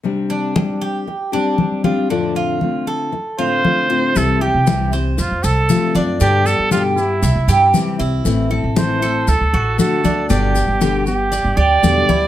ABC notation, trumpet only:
X:1
M:4/4
L:1/8
Q:1/4=117
K:C
V:1 name="Trumpet"
z8 | z4 z c3 | A G2 z F A2 z | G A F E3 z2 |
z2 c2 A2 A2 | G3 G2 d3 |]